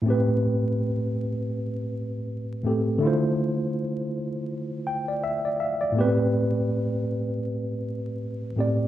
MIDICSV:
0, 0, Header, 1, 2, 480
1, 0, Start_track
1, 0, Key_signature, 0, "minor"
1, 0, Tempo, 740741
1, 29, Time_signature, 4, 2, 24, 8
1, 5752, End_track
2, 0, Start_track
2, 0, Title_t, "Tine electric piano"
2, 0, Program_c, 0, 4
2, 11, Note_on_c, 0, 45, 72
2, 23, Note_on_c, 0, 57, 60
2, 40, Note_on_c, 0, 60, 62
2, 54, Note_on_c, 0, 67, 64
2, 66, Note_on_c, 0, 71, 74
2, 158, Control_c, 0, 64, 127
2, 1674, Note_off_c, 0, 45, 0
2, 1680, Note_off_c, 0, 57, 0
2, 1688, Note_off_c, 0, 60, 0
2, 1695, Note_off_c, 0, 67, 0
2, 1701, Note_off_c, 0, 71, 0
2, 1706, Note_on_c, 0, 45, 51
2, 1713, Note_on_c, 0, 57, 56
2, 1721, Note_on_c, 0, 60, 48
2, 1726, Note_on_c, 0, 67, 60
2, 1734, Note_on_c, 0, 69, 57
2, 1933, Note_on_c, 0, 50, 80
2, 1938, Note_off_c, 0, 57, 0
2, 1946, Note_on_c, 0, 57, 70
2, 1947, Note_off_c, 0, 45, 0
2, 1955, Note_off_c, 0, 60, 0
2, 1956, Control_c, 0, 64, 0
2, 1957, Note_off_c, 0, 67, 0
2, 1961, Note_off_c, 0, 69, 0
2, 1962, Note_on_c, 0, 64, 65
2, 1975, Note_on_c, 0, 65, 68
2, 1990, Note_on_c, 0, 72, 76
2, 2074, Control_c, 0, 64, 127
2, 3154, Note_on_c, 0, 79, 72
2, 3282, Note_off_c, 0, 79, 0
2, 3294, Note_on_c, 0, 74, 57
2, 3384, Note_off_c, 0, 74, 0
2, 3393, Note_on_c, 0, 76, 77
2, 3532, Note_on_c, 0, 74, 61
2, 3614, Note_off_c, 0, 76, 0
2, 3625, Note_off_c, 0, 74, 0
2, 3630, Note_on_c, 0, 76, 62
2, 3631, Note_on_c, 0, 77, 66
2, 3763, Note_off_c, 0, 77, 0
2, 3764, Note_on_c, 0, 74, 72
2, 3835, Note_off_c, 0, 50, 0
2, 3838, Note_on_c, 0, 45, 70
2, 3841, Note_off_c, 0, 57, 0
2, 3850, Note_off_c, 0, 64, 0
2, 3852, Note_off_c, 0, 76, 0
2, 3852, Note_on_c, 0, 57, 65
2, 3856, Note_off_c, 0, 65, 0
2, 3863, Note_off_c, 0, 72, 0
2, 3867, Note_on_c, 0, 59, 53
2, 3876, Control_c, 0, 64, 0
2, 3879, Note_on_c, 0, 67, 73
2, 3892, Note_on_c, 0, 71, 89
2, 3906, Note_on_c, 0, 60, 64
2, 3917, Note_off_c, 0, 59, 0
2, 3995, Note_off_c, 0, 74, 0
2, 4003, Control_c, 0, 64, 127
2, 5507, Note_off_c, 0, 45, 0
2, 5514, Note_off_c, 0, 57, 0
2, 5528, Note_off_c, 0, 67, 0
2, 5534, Note_off_c, 0, 71, 0
2, 5541, Note_off_c, 0, 60, 0
2, 5547, Note_on_c, 0, 45, 56
2, 5552, Note_on_c, 0, 57, 52
2, 5560, Note_on_c, 0, 60, 50
2, 5564, Note_on_c, 0, 67, 52
2, 5574, Note_on_c, 0, 74, 67
2, 5752, Note_off_c, 0, 45, 0
2, 5752, Note_off_c, 0, 57, 0
2, 5752, Note_off_c, 0, 60, 0
2, 5752, Note_off_c, 0, 67, 0
2, 5752, Note_off_c, 0, 74, 0
2, 5752, End_track
0, 0, End_of_file